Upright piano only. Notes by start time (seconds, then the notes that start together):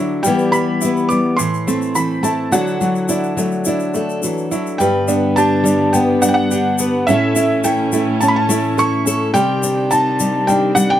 Already playing: F#3 A3 E4
0.23 G3
0.52 G3
0.81 E4
1.09 B3
1.38 E3
1.67 C4
1.95 E3
2.24 E4
2.52 F#3
2.81 F#3
3.09 E4
3.38 A3
3.66 E4
3.94 A3
4.23 F#3
4.51 E4
4.80 G3
5.08 D4
5.38 G4
5.65 D4
5.94 B3
6.22 D4
6.51 G4
6.79 B3
7.08 C#4
7.36 E4
7.65 A4
7.93 E4
8.22 C#4
8.50 E4
8.77 A4
9.05 C#4
9.34 G3
10.47 G3